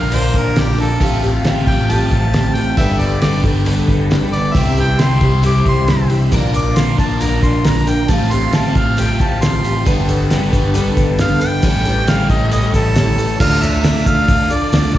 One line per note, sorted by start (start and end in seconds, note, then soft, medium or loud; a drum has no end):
0.00 0.32 A#1 medium
0.00 0.99 A#2 medium
0.00 1.00 D3 medium
0.00 0.11 F3 soft
0.00 0.11 A#3 soft
0.00 1.00 A#3 medium
0.00 0.11 D4 soft
0.00 1.01 D4 medium
0.00 1.00 F4 medium
0.00 1.01 F4 medium
0.00 0.11 A#4 soft
0.00 1.00 D5 medium
0.00 0.16 F5 medium
0.00 1.00 A#5 medium
0.11 0.56 A#2 medium
0.11 0.56 D3 medium
0.11 0.56 F3 medium
0.11 0.56 A#3 medium
0.11 0.57 D4 medium
0.11 0.57 A#4 medium
0.11 0.39 C5 medium
0.11 open hi-hat medium
0.34 0.97 A#1 medium
0.34 0.61 A#4 medium
0.34 kick medium
0.34 open hi-hat soft
0.56 0.79 F3 medium
0.56 0.79 A#3 medium
0.56 0.78 D4 medium
0.56 0.79 G4 medium
0.56 0.77 A#4 medium
0.56 snare loud
0.56 open hi-hat medium
0.78 1.00 F3 soft
0.78 1.01 A#3 soft
0.78 1.01 D4 soft
0.78 1.23 A4 medium
0.78 1.01 A#4 soft
0.78 open hi-hat medium
1.01 1.63 A1 medium
1.01 1.23 A2 medium
1.01 1.23 F3 medium
1.01 2.77 A3 medium
1.01 1.23 C4 medium
1.01 1.23 F4 medium
1.01 2.76 G4 medium
1.01 1.21 G4 medium
1.01 2.77 F5 medium
1.01 2.76 A5 medium
1.01 kick loud
1.01 open hi-hat medium
1.22 1.44 C4 soft
1.22 1.45 F4 soft
1.22 1.45 G4 medium
1.22 open hi-hat soft
1.44 1.88 F3 medium
1.44 1.89 C4 medium
1.44 1.88 F4 medium
1.44 1.90 G4 medium
1.44 snare loud
1.44 open hi-hat medium
1.67 2.09 A1 medium
1.67 1.92 G5 medium
1.67 kick medium
1.67 open hi-hat medium
1.89 2.33 A2 medium
1.89 2.32 F3 medium
1.89 2.33 C4 medium
1.89 2.33 F4 medium
1.89 2.35 G4 medium
1.89 2.57 A5 medium
1.89 open hi-hat medium
2.11 2.74 A1 medium
2.11 kick medium
2.11 open hi-hat soft
2.33 2.55 F3 medium
2.33 2.56 C4 medium
2.33 2.56 F4 medium
2.33 2.54 G4 medium
2.33 snare loud
2.33 open hi-hat medium
2.55 2.78 C4 soft
2.55 2.78 F4 soft
2.55 2.78 G4 soft
2.55 2.77 G5 medium
2.55 open hi-hat medium
2.77 3.40 G1 medium
2.77 4.53 G2 medium
2.77 4.54 D3 medium
2.77 3.00 G3 medium
2.77 3.00 B3 medium
2.77 3.00 D4 medium
2.77 4.55 G4 medium
2.77 4.53 A4 medium
2.77 2.99 A4 medium
2.77 3.00 E5 medium
2.77 4.53 G5 medium
2.77 4.53 B5 medium
2.77 kick loud
2.77 open hi-hat medium
2.99 3.21 B3 soft
2.99 3.22 D4 soft
2.99 3.22 A4 soft
2.99 3.21 D5 medium
2.99 open hi-hat medium
3.22 3.44 G3 medium
3.22 3.44 B3 medium
3.22 3.44 D4 medium
3.22 3.43 A4 medium
3.22 3.43 D5 loud
3.22 snare loud
3.22 open hi-hat medium
3.44 3.86 G1 medium
3.44 3.65 B3 soft
3.44 3.65 D4 soft
3.44 3.66 A4 medium
3.44 kick medium
3.44 open hi-hat medium
3.65 4.09 G3 medium
3.65 4.09 B3 medium
3.65 4.11 D4 medium
3.65 4.11 A4 medium
3.65 open hi-hat medium
3.88 4.51 G1 medium
3.88 kick medium
3.88 open hi-hat medium
4.10 4.33 G3 medium
4.10 4.33 B3 medium
4.10 4.33 D4 medium
4.10 4.31 A4 medium
4.10 snare loud
4.10 open hi-hat medium
4.32 4.56 B3 soft
4.32 4.56 D4 soft
4.32 4.55 A4 soft
4.32 4.56 D5 medium
4.32 open hi-hat medium
4.55 5.18 C2 medium
4.55 4.77 C3 medium
4.55 6.31 E3 medium
4.55 4.78 G3 medium
4.55 4.78 C4 medium
4.55 4.77 E4 medium
4.55 6.31 G4 medium
4.55 4.76 G4 medium
4.55 4.76 E5 medium
4.55 6.31 E5 medium
4.55 6.31 C6 medium
4.55 kick loud
4.55 open hi-hat medium
4.77 4.99 C4 soft
4.77 5.00 E4 soft
4.77 4.99 G4 medium
4.77 5.03 G5 medium
4.77 open hi-hat soft
4.99 5.22 G3 medium
4.99 5.22 C4 medium
4.99 5.22 E4 medium
4.99 5.21 G4 medium
4.99 5.43 C6 medium
4.99 snare loud
4.99 open hi-hat medium
5.21 5.63 C2 medium
5.21 5.42 C4 soft
5.21 5.43 E4 soft
5.21 5.43 G4 soft
5.21 kick medium
5.21 open hi-hat medium
5.43 5.87 C3 medium
5.43 5.86 G3 medium
5.43 5.87 C4 medium
5.43 5.88 E4 medium
5.43 5.88 G4 medium
5.43 5.66 D6 medium
5.43 open hi-hat medium
5.66 6.28 C2 medium
5.66 6.10 C6 medium
5.66 kick medium
5.66 open hi-hat soft
5.88 6.10 G3 medium
5.88 6.10 C4 medium
5.88 6.10 E4 medium
5.88 6.09 G4 medium
5.88 snare loud
5.88 open hi-hat medium
6.10 6.32 C4 soft
6.10 6.32 E4 soft
6.10 6.32 G4 soft
6.10 open hi-hat soft
6.32 6.95 A#1 medium
6.32 6.54 A#2 medium
6.32 6.54 D3 medium
6.32 6.54 F3 medium
6.32 6.54 A#3 medium
6.32 6.54 D4 medium
6.32 8.07 F4 medium
6.32 8.09 F4 medium
6.32 6.52 A#4 medium
6.32 8.08 D5 medium
6.32 8.08 A#5 medium
6.32 kick loud
6.32 open hi-hat medium
6.32 shaker medium
6.54 6.75 F3 soft
6.54 6.76 A#3 soft
6.54 6.76 D4 soft
6.54 6.76 A#4 soft
6.54 6.80 D6 medium
6.54 open hi-hat medium
6.54 shaker medium
6.76 7.21 F3 medium
6.76 7.20 A#3 medium
6.76 7.20 D4 medium
6.76 7.21 A#4 medium
6.76 6.99 C6 medium
6.76 snare loud
6.76 open hi-hat medium
6.76 shaker medium
6.98 7.40 A#1 medium
6.98 7.23 A5 medium
6.98 kick medium
6.98 open hi-hat medium
6.98 shaker medium
7.20 7.65 A#2 medium
7.20 7.65 D3 medium
7.20 7.63 F3 medium
7.20 7.64 A#3 medium
7.20 7.65 D4 medium
7.20 7.65 A#4 medium
7.20 7.42 A#5 medium
7.20 open hi-hat medium
7.20 shaker medium
7.43 8.05 A#1 medium
7.43 7.67 C6 medium
7.43 kick medium
7.43 open hi-hat medium
7.43 shaker medium
7.65 7.87 F3 medium
7.65 7.87 A#3 medium
7.65 7.86 D4 medium
7.65 7.85 A#4 medium
7.65 7.90 A#5 medium
7.65 snare loud
7.65 open hi-hat medium
7.65 shaker medium
7.87 8.08 F3 soft
7.87 8.09 A#3 soft
7.87 8.09 D4 soft
7.87 8.09 A#4 soft
7.87 8.12 G5 medium
7.87 open hi-hat medium
7.87 shaker medium
8.08 8.72 A1 medium
8.08 8.31 A2 medium
8.08 8.31 F3 medium
8.08 9.87 A3 medium
8.08 8.31 C4 medium
8.08 8.31 F4 medium
8.08 13.36 G4 medium
8.08 8.30 G4 medium
8.08 9.85 F5 medium
8.08 9.85 A5 medium
8.08 8.33 A5 medium
8.08 kick loud
8.08 open hi-hat medium
8.08 shaker medium
8.31 8.53 C4 soft
8.31 8.53 F4 soft
8.31 8.53 G4 medium
8.31 8.56 C6 medium
8.31 open hi-hat medium
8.31 shaker medium
8.53 8.96 F3 medium
8.53 8.97 C4 medium
8.53 8.97 F4 medium
8.53 8.98 G4 medium
8.53 8.79 A5 medium
8.53 snare loud
8.53 open hi-hat medium
8.53 shaker medium
8.75 9.17 A1 medium
8.75 9.02 F5 medium
8.75 kick medium
8.75 open hi-hat medium
8.75 shaker medium
8.97 9.41 A2 medium
8.97 9.41 F3 medium
8.97 9.42 C4 medium
8.97 9.42 F4 medium
8.97 9.44 G4 medium
8.97 9.24 G5 medium
8.97 open hi-hat medium
8.97 shaker medium
9.20 9.83 A1 medium
9.20 9.44 A5 medium
9.20 kick medium
9.20 open hi-hat soft
9.20 shaker medium
9.42 9.64 F3 medium
9.42 9.65 C4 medium
9.42 9.64 F4 medium
9.42 9.63 G4 medium
9.42 9.85 C6 loud
9.42 snare loud
9.42 open hi-hat medium
9.42 shaker medium
9.64 9.86 C4 soft
9.64 9.87 F4 soft
9.64 9.86 G4 medium
9.64 open hi-hat medium
9.64 shaker medium
9.85 10.49 G1 medium
9.85 11.61 G2 medium
9.85 11.62 D3 medium
9.85 10.09 G3 medium
9.85 10.09 B3 medium
9.85 10.09 D4 medium
9.85 11.63 G4 medium
9.85 10.08 A4 medium
9.85 11.62 B4 medium
9.85 13.37 A5 medium
9.85 kick loud
9.85 open hi-hat medium
9.85 shaker medium
10.08 10.30 B3 soft
10.08 10.30 D4 medium
10.08 10.31 A4 medium
10.08 open hi-hat medium
10.08 shaker medium
10.30 10.53 G3 medium
10.30 10.53 B3 medium
10.30 10.52 D4 medium
10.30 10.51 A4 medium
10.30 snare loud
10.30 open hi-hat medium
10.30 shaker medium
10.52 10.95 G1 medium
10.52 10.73 B3 soft
10.52 10.74 D4 soft
10.52 10.74 A4 medium
10.52 kick medium
10.52 open hi-hat medium
10.52 shaker medium
10.74 11.17 G3 medium
10.74 11.18 B3 medium
10.74 11.18 D4 medium
10.74 11.20 A4 loud
10.74 open hi-hat medium
10.74 shaker medium
10.97 11.59 G1 medium
10.97 kick medium
10.97 open hi-hat medium
10.97 shaker medium
11.18 11.41 G3 medium
11.18 11.40 B3 medium
11.18 11.40 D4 medium
11.18 11.39 A4 medium
11.18 11.41 F5 medium
11.18 snare loud
11.18 open hi-hat medium
11.18 shaker medium
11.40 11.63 B3 soft
11.40 11.63 D4 soft
11.40 11.63 A4 soft
11.40 12.10 G5 loud
11.40 open hi-hat medium
11.40 shaker medium
11.62 12.26 A1 loud
11.62 11.85 A2 medium
11.62 11.85 E3 medium
11.62 11.85 G3 medium
11.62 11.85 C#4 medium
11.62 13.40 G4 medium
11.62 11.84 A4 medium
11.62 13.38 C#5 medium
11.62 kick loud
11.62 open hi-hat medium
11.62 shaker medium
11.85 12.07 G3 soft
11.85 12.08 C#4 medium
11.85 12.07 A4 medium
11.85 open hi-hat medium
11.85 shaker medium
12.07 12.50 E3 medium
12.07 12.51 G3 medium
12.07 12.51 C#4 medium
12.07 12.52 A4 medium
12.07 12.29 F5 medium
12.07 snare loud
12.07 open hi-hat medium
12.07 shaker medium
12.30 12.71 A1 medium
12.30 12.51 D#5 medium
12.30 kick medium
12.30 open hi-hat medium
12.30 shaker medium
12.52 12.96 A2 medium
12.52 12.95 E3 medium
12.52 12.95 G3 medium
12.52 12.96 C#4 medium
12.52 12.96 A4 medium
12.52 12.74 D#5 medium
12.52 open hi-hat medium
12.52 shaker medium
12.74 13.36 A1 medium
12.74 13.39 A4 medium
12.74 kick medium
12.74 open hi-hat medium
12.74 shaker medium
12.96 13.18 E3 medium
12.96 13.18 G3 medium
12.96 13.19 C#4 medium
12.96 13.17 A4 medium
12.96 snare loud
12.96 open hi-hat medium
12.96 shaker medium
13.18 13.41 G3 soft
13.18 13.41 C#4 soft
13.18 13.40 A4 soft
13.18 open hi-hat medium
13.18 shaker medium
13.39 13.61 D2 loud
13.39 13.62 D3 medium
13.39 13.63 A3 medium
13.39 13.99 D4 medium
13.39 13.62 D4 medium
13.39 14.98 F4 medium
13.39 13.99 F4 medium
13.39 13.60 F4 medium
13.39 13.98 A4 medium
13.39 14.98 D5 medium
13.39 13.98 D5 medium
13.39 13.64 F5 loud
13.39 14.98 A5 medium
13.39 kick loud
13.39 crash loud
13.39 shaker medium
13.61 14.47 D2 medium
13.61 13.83 A3 soft
13.61 13.84 D4 soft
13.61 13.84 F4 medium
13.61 14.09 E5 loud
13.61 snare soft
13.61 shaker loud
13.73 shaker soft
13.84 14.06 D3 medium
13.84 14.06 A3 medium
13.84 14.06 D4 medium
13.84 14.05 F4 medium
13.84 snare loud
13.84 open hi-hat medium
13.84 shaker medium
14.06 14.28 A3 soft
14.06 14.29 D4 soft
14.06 14.28 F4 medium
14.06 14.54 F5 loud
14.06 kick medium
14.06 shaker loud
14.28 14.71 D3 medium
14.28 14.72 A3 medium
14.28 14.73 D4 medium
14.28 14.73 F4 medium
14.28 kick loud
14.28 open hi-hat medium
14.28 shaker medium
14.50 14.94 D4 medium
14.50 14.94 F4 medium
14.50 14.94 A4 medium
14.50 14.94 D5 medium
14.50 14.95 D5 medium
14.50 shaker loud
14.72 14.98 D2 loud
14.72 14.94 D3 medium
14.72 14.95 A3 medium
14.72 14.95 D4 medium
14.72 14.93 F4 medium
14.72 snare loud
14.72 open hi-hat medium
14.72 shaker medium
14.94 14.98 F4 medium
14.94 kick medium